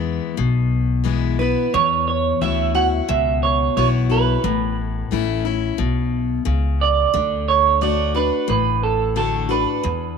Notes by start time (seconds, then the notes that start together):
Already playing: E2 E3 G#3 B3 E4 B4
0.37 B1 B2
1.04 E3 G#3 B3 E4
1.39 B3 E4 B4
1.74 E2 C#5
2.08 C#5
2.41 D2 E3 B3 E4 F#4 E5
2.75 E4 F#4 F#5
3.09 C#2 B2 E5
3.43 C#5
3.77 B1 E3 B3 E4 F#4 C#5
4.10 E4 F#4 B4
4.44 A1 A2
5.11 A1 E3 A3 C#4 E4
5.45 C#4 E4
5.78 B1 B2
6.45 C#2 C#3
6.81 D5
7.14 D2 D3
7.48 C#5
7.81 D3 A3 D4 F#4 D5
8.14 D4 F#4 B4
8.48 A1 A2 B4
8.83 A4
9.16 D3 A3 D4 F#4 A4
9.49 D4 F#4 B4
9.83 E2